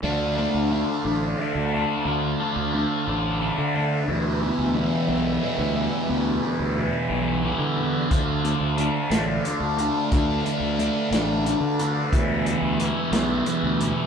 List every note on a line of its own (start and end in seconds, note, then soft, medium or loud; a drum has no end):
0.03 0.45 D2 medium
0.03 0.37 D3 medium
0.03 4.04 A3 medium
0.03 0.38 A3 medium
0.03 4.04 D4 medium
0.03 0.37 D4 medium
0.03 4.04 F4 medium
0.03 4.04 C5 soft
0.03 4.04 F5 medium
0.38 0.69 D3 medium
0.38 0.71 A3 medium
0.38 0.71 D4 medium
0.54 0.82 D2 medium
0.71 1.05 D3 medium
0.71 1.05 A3 medium
0.71 1.04 D4 medium
1.05 1.33 A1 medium
1.05 1.37 D3 medium
1.05 1.38 A3 medium
1.05 1.39 D4 medium
1.39 1.72 D3 medium
1.39 1.72 A3 medium
1.39 1.72 D4 medium
1.55 1.83 D2 medium
1.73 2.05 D3 medium
1.73 2.06 A3 medium
1.73 2.06 D4 medium
2.05 2.34 D2 medium
2.05 2.40 D3 medium
2.05 2.40 A3 medium
2.05 2.39 D4 medium
2.40 2.72 D3 medium
2.40 2.73 A3 medium
2.40 2.74 D4 medium
2.56 2.84 D2 medium
2.74 3.07 D3 medium
2.74 3.08 A3 medium
2.74 3.07 D4 medium
3.08 3.49 A1 medium
3.08 3.40 D3 medium
3.08 3.40 A3 medium
3.08 3.41 D4 medium
3.41 3.75 D3 medium
3.41 3.74 A3 medium
3.41 3.74 D4 medium
3.58 4.00 D3 medium
3.75 4.08 D3 medium
3.75 4.08 A3 medium
3.75 4.08 D4 medium
4.08 4.50 D2 medium
4.08 4.41 E2 medium
4.08 4.41 B2 medium
4.08 4.40 E3 medium
4.08 8.07 G3 medium
4.08 8.07 B3 soft
4.08 8.07 E4 soft
4.08 8.07 B4 soft
4.08 6.08 E5 medium
4.41 4.74 E2 medium
4.41 4.74 B2 medium
4.41 4.75 E3 medium
4.58 4.86 D2 medium
4.75 5.08 E2 medium
4.75 5.08 B2 medium
4.75 5.07 E3 medium
5.08 5.37 B1 medium
5.08 5.41 E2 medium
5.08 5.42 B2 medium
5.08 5.42 E3 medium
5.42 5.76 E2 medium
5.42 5.75 B2 medium
5.42 5.74 E3 medium
5.58 5.87 D2 medium
5.76 6.08 E2 medium
5.76 6.08 B2 medium
5.76 6.09 E3 medium
6.09 6.37 D2 medium
6.09 6.43 E2 medium
6.09 6.43 B2 medium
6.09 6.42 E3 loud
6.09 8.09 D5 medium
6.43 6.76 E2 medium
6.43 6.77 B2 medium
6.43 6.77 E3 medium
6.59 6.88 D2 medium
6.77 7.10 E2 medium
6.77 7.10 B2 medium
6.77 7.09 E3 medium
7.09 7.52 B1 medium
7.09 7.43 E2 medium
7.09 7.43 B2 medium
7.09 7.44 E3 medium
7.45 7.77 E2 medium
7.45 7.77 B2 medium
7.45 7.76 E3 medium
7.59 8.01 D3 medium
7.77 8.11 E2 medium
7.77 8.10 B2 medium
7.77 8.11 E3 medium
8.11 8.53 D2 medium
8.11 8.43 D3 medium
8.11 8.43 A3 medium
8.11 12.09 A3 medium
8.11 12.09 D4 soft
8.11 8.43 D4 medium
8.11 12.08 F4 soft
8.11 10.10 C5 soft
8.11 12.09 F5 medium
8.11 kick loud
8.11 closed hi-hat medium
8.44 8.76 D3 medium
8.44 8.76 A3 medium
8.44 8.77 D4 medium
8.44 closed hi-hat medium
8.60 8.88 D2 medium
8.77 9.10 D3 medium
8.77 9.10 A3 medium
8.77 9.09 D4 medium
8.77 closed hi-hat medium
9.10 9.38 A1 medium
9.10 9.43 D3 medium
9.10 9.44 A3 medium
9.10 9.44 D4 medium
9.10 snare loud
9.10 closed hi-hat medium
9.44 9.78 D3 medium
9.44 9.77 A3 medium
9.44 9.77 D4 medium
9.44 closed hi-hat medium
9.60 9.89 D2 medium
9.78 10.10 D3 medium
9.78 10.11 A3 medium
9.78 10.12 D4 medium
9.78 closed hi-hat medium
10.11 10.40 D2 medium
10.11 10.45 D3 medium
10.11 10.44 A3 medium
10.11 10.44 D4 medium
10.11 14.07 B4 soft
10.11 kick loud
10.11 closed hi-hat medium
10.45 10.77 D3 medium
10.45 10.78 A3 medium
10.45 10.78 D4 medium
10.45 closed hi-hat medium
10.60 10.89 D2 medium
10.79 11.12 D3 medium
10.79 11.11 A3 medium
10.79 11.11 D4 medium
10.79 closed hi-hat medium
11.11 11.53 A1 medium
11.11 11.45 D3 medium
11.11 11.45 A3 medium
11.11 11.45 D4 medium
11.11 snare loud
11.11 closed hi-hat medium
11.46 11.79 D3 medium
11.46 11.79 A3 medium
11.46 11.78 D4 medium
11.46 closed hi-hat medium
11.60 12.03 D3 medium
11.79 12.13 D3 medium
11.79 12.13 A3 medium
11.79 12.13 D4 medium
11.79 closed hi-hat medium
12.11 12.54 D2 medium
12.11 12.45 E2 medium
12.11 12.45 B2 medium
12.11 12.44 E3 medium
12.11 14.07 G3 medium
12.11 14.07 B3 soft
12.11 14.07 E4 medium
12.11 14.07 E5 medium
12.11 kick loud
12.11 closed hi-hat medium
12.45 12.78 E2 medium
12.45 12.79 B2 medium
12.45 12.79 E3 medium
12.45 closed hi-hat medium
12.62 12.90 D2 medium
12.79 13.12 E2 medium
12.79 13.11 B2 medium
12.79 13.11 E3 medium
12.79 closed hi-hat medium
13.11 13.40 B1 medium
13.11 13.45 E2 medium
13.11 13.45 B2 medium
13.11 13.46 E3 medium
13.11 snare loud
13.11 closed hi-hat medium
13.46 13.79 E2 medium
13.46 13.78 B2 medium
13.46 13.78 E3 medium
13.46 closed hi-hat medium
13.63 13.91 D2 medium
13.79 14.07 E2 medium
13.79 14.07 B2 medium
13.79 14.07 E3 medium
13.79 closed hi-hat medium